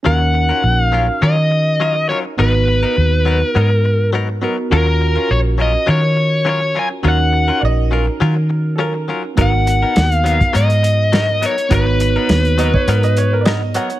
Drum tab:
HH |----------------|----------------|----------------|----------------|
SD |----------------|----------------|----------------|----------------|
BD |----------------|----------------|----------------|----------------|

HH |x-x-xxxxxxx-x-xx|x-x-xxx-xxx-x-xx|
SD |----o-------o---|----o-------o---|
BD |o------o--------|o------o--------|